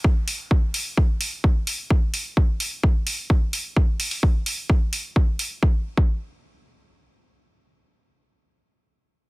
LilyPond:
\new DrumStaff \with { instrumentName = "Drums" } \drummode { \time 4/4 \tempo 4 = 129 bd8 hho8 bd8 hho8 bd8 hho8 bd8 hho8 | bd8 hho8 bd8 hho8 bd8 hho8 bd8 hho8 | bd8 hho16 hho16 bd8 hho8 bd8 hho8 bd8 hho8 | bd8. bd16 r4 r4 r4 |
r4 r4 r4 r4 | }